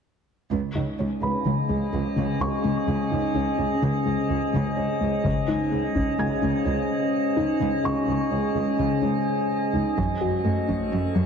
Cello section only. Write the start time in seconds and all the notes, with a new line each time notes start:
0.52 C#2
0.76 C#2
0.99 C#2
1.22 C#2
1.46 C#2
1.70 C#2
1.93 C#2
2.17 C#2
2.41 C#2
2.64 C#2
2.88 C#2
3.12 C#2
3.36 C#2
3.58 C#2
3.83 C#2
4.06 C#2
4.30 C#2
4.54 C#2
4.78 C#2
5.01 C#2
5.25 C#2
5.49 C#2
5.73 C#2
5.96 C#2
6.19 C#2
6.43 C#2
6.67 C#2
7.38 C#2
7.61 C#2
7.84 C#2
8.08 C#2
8.32 C#2
8.55 C#2
8.79 C#2
9.04 C#2
9.74 C#2
9.98 F#2
10.21 F#2
10.45 F#2
10.68 F#2
10.92 F#2
11.16 F#2